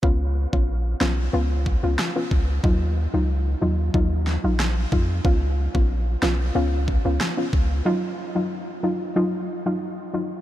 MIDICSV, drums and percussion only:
0, 0, Header, 1, 2, 480
1, 0, Start_track
1, 0, Tempo, 652174
1, 23, Time_signature, 4, 2, 24, 8
1, 7664, End_track
2, 0, Start_track
2, 0, Title_t, "Drums"
2, 22, Note_on_c, 9, 36, 113
2, 96, Note_off_c, 9, 36, 0
2, 391, Note_on_c, 9, 36, 89
2, 464, Note_off_c, 9, 36, 0
2, 743, Note_on_c, 9, 38, 99
2, 744, Note_on_c, 9, 37, 76
2, 817, Note_off_c, 9, 38, 0
2, 818, Note_off_c, 9, 37, 0
2, 1223, Note_on_c, 9, 36, 83
2, 1297, Note_off_c, 9, 36, 0
2, 1463, Note_on_c, 9, 38, 114
2, 1464, Note_on_c, 9, 37, 94
2, 1537, Note_off_c, 9, 38, 0
2, 1538, Note_off_c, 9, 37, 0
2, 1702, Note_on_c, 9, 36, 82
2, 1776, Note_off_c, 9, 36, 0
2, 1942, Note_on_c, 9, 36, 113
2, 2016, Note_off_c, 9, 36, 0
2, 2901, Note_on_c, 9, 36, 89
2, 2974, Note_off_c, 9, 36, 0
2, 3141, Note_on_c, 9, 38, 62
2, 3215, Note_off_c, 9, 38, 0
2, 3383, Note_on_c, 9, 37, 98
2, 3383, Note_on_c, 9, 38, 116
2, 3457, Note_off_c, 9, 37, 0
2, 3457, Note_off_c, 9, 38, 0
2, 3622, Note_on_c, 9, 36, 83
2, 3696, Note_off_c, 9, 36, 0
2, 3862, Note_on_c, 9, 36, 117
2, 3936, Note_off_c, 9, 36, 0
2, 4230, Note_on_c, 9, 36, 91
2, 4304, Note_off_c, 9, 36, 0
2, 4583, Note_on_c, 9, 38, 102
2, 4584, Note_on_c, 9, 37, 80
2, 4656, Note_off_c, 9, 38, 0
2, 4658, Note_off_c, 9, 37, 0
2, 5063, Note_on_c, 9, 36, 85
2, 5137, Note_off_c, 9, 36, 0
2, 5304, Note_on_c, 9, 37, 95
2, 5304, Note_on_c, 9, 38, 119
2, 5377, Note_off_c, 9, 37, 0
2, 5377, Note_off_c, 9, 38, 0
2, 5543, Note_on_c, 9, 36, 83
2, 5616, Note_off_c, 9, 36, 0
2, 7664, End_track
0, 0, End_of_file